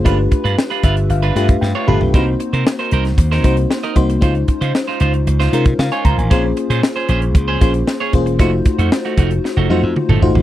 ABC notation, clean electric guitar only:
X:1
M:4/4
L:1/16
Q:1/4=115
K:Db
V:1 name="Clean electric guitar"
[=DF=B] z2 [DFB] z [DFB] [DFB] z2 [DFB] [DFB] z2 [DF_d] [=DFB] z | [EBc] z2 [EBc] z [EBc] [EBc] z2 [EBc] [EBc] z2 [EBe] z2 | [EFc] z2 [EFc] z [EFc] [EFc] z2 [EFc] [EFc] z2 [EFd] [EFc] z | [DAc] z2 [DAc] z [DAc] [DAc] z2 [DAc] [DAc] z2 [DAd] z2 |
[=A,EG] z2 [A,EG] z [A,EG] [A,EG] z2 [A,EG] [A,EG] z2 [A,E=A] z2 |]